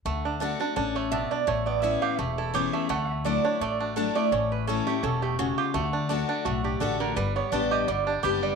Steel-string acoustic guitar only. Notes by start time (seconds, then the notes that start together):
0.06 D3
0.40 D3 A3 D4 F#4
0.60 D4 F#4
0.76 C#4
1.12 B2
1.47 A2
1.82 E3 B3 C#4 E4
2.19 E2
2.54 E3 B3 C#4 E4
2.89 D3
3.25 F#3 A3 D4 E4
3.61 A2
3.96 F#3 A3 D4 E4
4.15 D4 E4
4.32 A2
4.67 E3 A3 C#4 E4
4.87 C#4 E4
5.04 B2
5.39 C#3
5.74 D3
6.09 D3 A3 D4 F#4
6.46 A2
6.80 D3 A3 D4 F#4
7.17 G2
7.52 G3 B3 D4 G4
7.88 D3
8.23 G3 B3 D4 G4